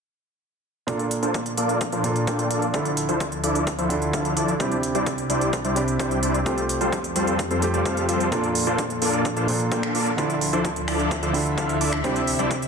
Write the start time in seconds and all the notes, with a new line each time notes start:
0.87 A#2 F3 A#3 D4 F4 A4 D5, kick, closed hi-hat
0.99 closed hi-hat
1.11 closed hi-hat
1.23 A#3 D4 F4 A4 C5, closed hi-hat
1.34 kick, closed hi-hat
1.46 closed hi-hat
1.58 A#3 D4 F4 A4 D5, closed hi-hat
1.69 closed hi-hat
1.81 kick, closed hi-hat
1.92 A#3 D4 F4 A4 C5, closed hi-hat
2.03 A#2 A#3 D4 F4 A4, closed hi-hat
2.16 closed hi-hat
2.27 A#3 D4 F4 A4 G5, kick, closed hi-hat
2.39 closed hi-hat
2.51 A#3 D4 F4 A4 D5, closed hi-hat
2.62 closed hi-hat
2.73 D2 D3 F3 D4 E4 F4 A4 D5 E5, kick, closed hi-hat
2.85 closed hi-hat
2.97 closed hi-hat
3.09 F3 D4 E4 A4 C5, closed hi-hat
3.20 kick, closed hi-hat
3.32 closed hi-hat
3.44 F3 D4 E4 A4 D5, closed hi-hat
3.55 closed hi-hat
3.67 kick, closed hi-hat
3.78 F3 D4 E4 A4 C5, closed hi-hat
3.89 D3 D4 E4 F4 A4, closed hi-hat
4.02 closed hi-hat
4.13 F3 D4 E4 A4 F5, kick, closed hi-hat
4.25 closed hi-hat
4.37 F3 D4 E4 A4 D5, closed hi-hat
4.48 closed hi-hat
4.59 C2 C3 G3 C4 D4 E4 G4 C5 D5, kick, closed hi-hat
4.72 closed hi-hat
4.83 closed hi-hat
4.95 G3 D4 E4 C5 D5, closed hi-hat
5.06 kick, closed hi-hat
5.18 closed hi-hat
5.30 G3 D4 E4 C5 D5, closed hi-hat
5.41 closed hi-hat
5.53 kick, closed hi-hat
5.65 G3 D4 E4 C5 D5, closed hi-hat
5.75 C3 C4 D4 E4 G4, closed hi-hat
5.88 closed hi-hat
5.99 G3 D4 E4 C5 G5, kick, closed hi-hat
6.11 closed hi-hat
6.23 G3 D4 E4 C5 D5, closed hi-hat
6.34 closed hi-hat
6.45 F2 F3 G3 A3 C4 F4 G4 A4 C5, kick, closed hi-hat
6.58 closed hi-hat
6.69 closed hi-hat
6.81 G3 C4 F4 A4 C5, closed hi-hat
6.92 kick, closed hi-hat
7.04 closed hi-hat
7.16 G3 C4 F4 A4 C5, closed hi-hat
7.27 closed hi-hat
7.39 kick, closed hi-hat
7.51 G3 C4 F4 A4 C5, closed hi-hat
7.61 A3 C4 F4 G4, closed hi-hat
7.74 G3 C4 F4 A4 D5, closed hi-hat
7.85 G3 C4 F4 A4 F5, kick, closed hi-hat
7.97 closed hi-hat
8.09 G3 C4 F4 A4 C5, closed hi-hat
8.20 closed hi-hat
8.31 A#2 A#3 D4 F4 A4 D5, kick, closed hi-hat
8.44 closed hi-hat
8.55 open hi-hat
8.67 A#3 D4 F4 A4 C5, closed hi-hat
8.78 kick, closed hi-hat
8.90 closed hi-hat
9.02 A#3 D4 F4 A4 D5, open hi-hat
9.13 closed hi-hat
9.25 kick, closed hi-hat
9.37 A#3 D4 F4 A4 C5, closed hi-hat
9.47 A#2 A#3 D4 F4 A4, open hi-hat
9.60 closed hi-hat
9.72 A#3 D4 F4 A4 G5, kick, closed hi-hat
9.83 finger snap, closed hi-hat
9.95 A#3 D4 F4 A4 D5, open hi-hat
10.06 closed hi-hat
10.17 D2 D3 F3 D4 E4 F4 A4 D5 E5, kick, closed hi-hat
10.30 closed hi-hat
10.41 open hi-hat
10.53 F3 D4 E4 A4 C5, closed hi-hat
10.65 kick, closed hi-hat
10.76 closed hi-hat
10.88 F3 D4 E4 A4 D5, finger snap, open hi-hat
11.00 closed hi-hat
11.11 kick, closed hi-hat
11.23 F3 D4 E4 A4 C5, closed hi-hat
11.33 D3 D4 E4 F4 A4, open hi-hat
11.46 closed hi-hat
11.58 F3 D4 E4 A4 F5, kick, closed hi-hat
11.69 closed hi-hat
11.81 F3 D4 E4 A4 D5, open hi-hat
11.93 finger snap
12.03 C2 C3 G3 C4 D4 E4 G4 C5 D5, kick, closed hi-hat
12.16 closed hi-hat
12.27 open hi-hat
12.39 G3 D4 E4 C5 D5, closed hi-hat
12.51 kick, closed hi-hat
12.62 closed hi-hat